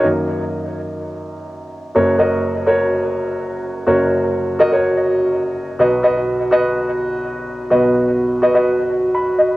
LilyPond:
<<
  \new Staff \with { instrumentName = "Grand piano" } { \time 4/4 \key fis \major \tempo 4 = 125 << { r1 | r1 | r1 | r1 |
r2. b''8 dis''8 | } \\ { r1 | <fis' ais' cis''>8 <fis' ais' dis''>4 <fis' ais' cis''>4.~ <fis' ais' cis''>16 r8. | <fis' ais' cis''>4~ <fis' ais' cis''>16 r16 <fis' ais' dis''>16 <fis' ais' cis''>4.~ <fis' ais' cis''>16 r8 | <fis' b' dis''>8 <fis' b' dis''>4 <fis' b' dis''>4.~ <fis' b' dis''>16 r8. |
<fis' b' dis''>4~ <fis' b' dis''>16 r16 <fis' b' dis''>16 <fis' b' dis''>4.~ <fis' b' dis''>16 r8 | } >> }
  \new Staff \with { instrumentName = "Grand piano" } { \clef bass \time 4/4 \key fis \major <fis, dis ais>4. r2 r8 | <fis,, fis,>1 | <fis,, fis,>1 | <b,, b,>1 |
<b,, b,>1 | }
>>